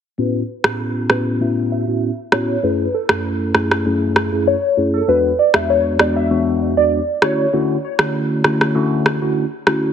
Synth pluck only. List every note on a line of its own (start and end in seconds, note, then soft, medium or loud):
0.19 1.10 B4 medium
1.11 1.42 B4 loud
1.41 1.70 E5 loud
1.72 2.35 E5 loud
2.33 2.64 C#5 medium
2.64 2.92 B4 medium
2.94 3.82 A4 medium
4.47 4.95 C#5 loud
4.94 5.09 A4 medium
5.09 5.37 B4 loud
5.39 5.55 D5 medium
5.55 5.70 E5 loud
5.70 5.83 C#5 loud
6.00 6.17 D5 loud
6.16 6.79 E5 loud
6.77 7.24 D5 medium
7.23 7.80 C#5 medium